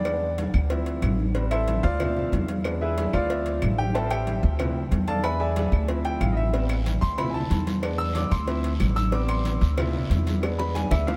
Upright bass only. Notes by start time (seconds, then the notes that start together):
Already playing: E2
0.54 D2
1.02 A1
1.83 D2
2.32 E2
3.13 D2
3.62 A1
4.43 D2
4.91 E2
5.72 D2
6.20 A1
7.02 D2
7.50 E2
8.31 D2
8.80 A1
9.61 D2
10.10 E2
10.91 D2